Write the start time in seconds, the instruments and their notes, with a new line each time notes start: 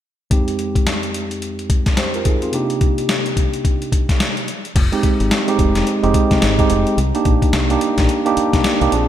0.30 tine electric piano F2 G#3 C4 D#4 G4, kick, closed hi-hat
0.48 closed hi-hat
0.59 closed hi-hat
0.75 kick, closed hi-hat
0.87 snare, closed hi-hat
1.03 closed hi-hat
1.14 closed hi-hat
1.31 closed hi-hat
1.42 closed hi-hat
1.59 closed hi-hat
1.70 kick, closed hi-hat
1.86 kick, snare, closed hi-hat
1.97 tine electric piano G4 C5, snare, closed hi-hat
2.14 tine electric piano F4 A#4, closed hi-hat
2.25 tine electric piano D#4 G#4, kick, closed hi-hat
2.42 tine electric piano C4 F4, closed hi-hat
2.52 tine electric piano C3 A#3 D4 D#4 G4, closed hi-hat
2.70 closed hi-hat
2.81 kick, closed hi-hat
2.98 closed hi-hat
3.09 snare, closed hi-hat
3.26 closed hi-hat
3.37 kick, closed hi-hat
3.54 closed hi-hat
3.65 kick, closed hi-hat
3.82 closed hi-hat
3.92 kick, closed hi-hat
4.09 kick, snare, closed hi-hat
4.20 snare, closed hi-hat
4.37 closed hi-hat
4.48 closed hi-hat
4.65 closed hi-hat
4.76 fingered electric bass F1, kick, closed hi-hat, crash
4.92 tine electric piano G#3 C4 D#4 G4, closed hi-hat
5.03 kick, closed hi-hat
5.20 fingered electric bass G#1, closed hi-hat
5.31 snare, closed hi-hat
5.48 tine electric piano G#3 C4 D#4 G4, closed hi-hat
5.59 fingered electric bass F1, kick, closed hi-hat
5.75 snare, closed hi-hat
5.87 closed hi-hat
6.03 fingered electric bass F1, tine electric piano G#3 C4 D#4 G4, closed hi-hat
6.14 kick, closed hi-hat
6.31 fingered electric bass C2, kick, snare, closed hi-hat
6.42 fingered electric bass G#1, snare, closed hi-hat
6.59 tine electric piano G#3 C4 D#4 G4, kick, closed hi-hat
6.70 fingered electric bass F1, closed hi-hat
6.87 closed hi-hat
6.98 fingered electric bass C2, closed hi-hat
7.15 tine electric piano A#3 D4 D#4 G4, closed hi-hat
7.25 fingered electric bass A#1, kick, closed hi-hat
7.42 kick, closed hi-hat
7.53 fingered electric bass C2, snare, closed hi-hat
7.70 tine electric piano A#3 D4 D#4 G4, closed hi-hat
7.81 closed hi-hat
7.98 fingered electric bass A#1, kick, snare, closed hi-hat
8.09 closed hi-hat
8.26 tine electric piano A#3 D4 D#4 G4, closed hi-hat
8.37 muted fingered electric bass stroke, closed hi-hat
8.53 fingered electric bass C2, kick, snare, closed hi-hat
8.64 snare, closed hi-hat
8.81 fingered electric bass C2, tine electric piano A#3 D4 D#4 G4, closed hi-hat
8.92 fingered electric bass A#1, tine electric piano C4 D4 F4 G#4, closed hi-hat